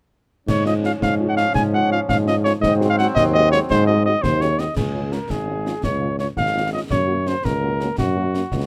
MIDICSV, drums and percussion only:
0, 0, Header, 1, 2, 480
1, 0, Start_track
1, 0, Key_signature, -5, "major"
1, 0, Tempo, 356930
1, 644, Time_signature, 6, 3, 24, 8
1, 11647, End_track
2, 0, Start_track
2, 0, Title_t, "Drums"
2, 652, Note_on_c, 9, 35, 77
2, 652, Note_on_c, 9, 38, 78
2, 652, Note_on_c, 9, 49, 49
2, 786, Note_off_c, 9, 35, 0
2, 786, Note_off_c, 9, 38, 0
2, 786, Note_off_c, 9, 49, 0
2, 885, Note_on_c, 9, 38, 51
2, 1019, Note_off_c, 9, 38, 0
2, 1131, Note_on_c, 9, 38, 55
2, 1265, Note_off_c, 9, 38, 0
2, 1376, Note_on_c, 9, 35, 74
2, 1376, Note_on_c, 9, 38, 75
2, 1511, Note_off_c, 9, 35, 0
2, 1511, Note_off_c, 9, 38, 0
2, 1847, Note_on_c, 9, 38, 59
2, 1981, Note_off_c, 9, 38, 0
2, 2090, Note_on_c, 9, 35, 84
2, 2090, Note_on_c, 9, 38, 74
2, 2224, Note_off_c, 9, 35, 0
2, 2224, Note_off_c, 9, 38, 0
2, 2816, Note_on_c, 9, 35, 77
2, 2816, Note_on_c, 9, 38, 70
2, 2950, Note_off_c, 9, 35, 0
2, 2950, Note_off_c, 9, 38, 0
2, 3060, Note_on_c, 9, 38, 60
2, 3194, Note_off_c, 9, 38, 0
2, 3302, Note_on_c, 9, 38, 58
2, 3437, Note_off_c, 9, 38, 0
2, 3542, Note_on_c, 9, 35, 81
2, 3542, Note_on_c, 9, 38, 70
2, 3677, Note_off_c, 9, 35, 0
2, 3677, Note_off_c, 9, 38, 0
2, 3786, Note_on_c, 9, 38, 54
2, 3921, Note_off_c, 9, 38, 0
2, 4019, Note_on_c, 9, 38, 59
2, 4153, Note_off_c, 9, 38, 0
2, 4255, Note_on_c, 9, 35, 75
2, 4255, Note_on_c, 9, 38, 74
2, 4389, Note_off_c, 9, 35, 0
2, 4389, Note_off_c, 9, 38, 0
2, 4743, Note_on_c, 9, 38, 64
2, 4878, Note_off_c, 9, 38, 0
2, 4985, Note_on_c, 9, 35, 78
2, 4985, Note_on_c, 9, 38, 74
2, 5120, Note_off_c, 9, 35, 0
2, 5120, Note_off_c, 9, 38, 0
2, 5700, Note_on_c, 9, 35, 76
2, 5700, Note_on_c, 9, 38, 74
2, 5834, Note_off_c, 9, 35, 0
2, 5834, Note_off_c, 9, 38, 0
2, 5934, Note_on_c, 9, 38, 54
2, 6069, Note_off_c, 9, 38, 0
2, 6169, Note_on_c, 9, 38, 59
2, 6303, Note_off_c, 9, 38, 0
2, 6409, Note_on_c, 9, 35, 73
2, 6409, Note_on_c, 9, 38, 62
2, 6409, Note_on_c, 9, 49, 41
2, 6543, Note_off_c, 9, 35, 0
2, 6543, Note_off_c, 9, 38, 0
2, 6543, Note_off_c, 9, 49, 0
2, 6887, Note_on_c, 9, 38, 49
2, 7021, Note_off_c, 9, 38, 0
2, 7128, Note_on_c, 9, 35, 67
2, 7128, Note_on_c, 9, 38, 62
2, 7262, Note_off_c, 9, 35, 0
2, 7262, Note_off_c, 9, 38, 0
2, 7616, Note_on_c, 9, 38, 53
2, 7751, Note_off_c, 9, 38, 0
2, 7847, Note_on_c, 9, 35, 74
2, 7847, Note_on_c, 9, 38, 64
2, 7982, Note_off_c, 9, 35, 0
2, 7982, Note_off_c, 9, 38, 0
2, 8324, Note_on_c, 9, 38, 52
2, 8458, Note_off_c, 9, 38, 0
2, 8567, Note_on_c, 9, 35, 66
2, 8567, Note_on_c, 9, 38, 58
2, 8701, Note_off_c, 9, 35, 0
2, 8701, Note_off_c, 9, 38, 0
2, 9287, Note_on_c, 9, 35, 76
2, 9287, Note_on_c, 9, 38, 67
2, 9422, Note_off_c, 9, 35, 0
2, 9422, Note_off_c, 9, 38, 0
2, 9772, Note_on_c, 9, 38, 56
2, 9906, Note_off_c, 9, 38, 0
2, 10022, Note_on_c, 9, 35, 71
2, 10022, Note_on_c, 9, 38, 67
2, 10156, Note_off_c, 9, 35, 0
2, 10156, Note_off_c, 9, 38, 0
2, 10496, Note_on_c, 9, 38, 51
2, 10631, Note_off_c, 9, 38, 0
2, 10736, Note_on_c, 9, 35, 78
2, 10736, Note_on_c, 9, 38, 73
2, 10871, Note_off_c, 9, 35, 0
2, 10871, Note_off_c, 9, 38, 0
2, 11222, Note_on_c, 9, 38, 53
2, 11357, Note_off_c, 9, 38, 0
2, 11455, Note_on_c, 9, 35, 71
2, 11455, Note_on_c, 9, 38, 59
2, 11589, Note_off_c, 9, 35, 0
2, 11589, Note_off_c, 9, 38, 0
2, 11647, End_track
0, 0, End_of_file